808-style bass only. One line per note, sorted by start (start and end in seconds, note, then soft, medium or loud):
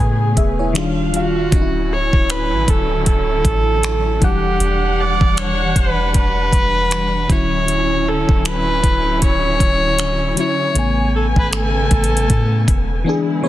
0.00 0.36 A2 loud
0.37 1.48 D#1 loud
1.52 2.11 D1 loud
2.13 2.53 D1 loud
2.52 2.67 A1 loud
2.68 3.05 D1 loud
3.07 3.43 D1 loud
3.45 4.19 A1 loud
4.22 4.59 E1 loud
4.60 5.19 E1 loud
5.21 5.73 E1 loud
5.76 6.13 E1 loud
6.15 6.51 E1 loud
6.53 7.26 E1 medium
7.30 8.25 D1 loud
8.29 8.81 D1 loud
8.84 9.20 D1 loud
9.22 9.59 D1 loud
9.60 10.34 D1 loud
10.76 11.34 A1 loud
11.36 11.89 G#1 medium
11.91 12.28 A1 loud
12.30 12.67 A2 loud
12.68 13.05 E1 loud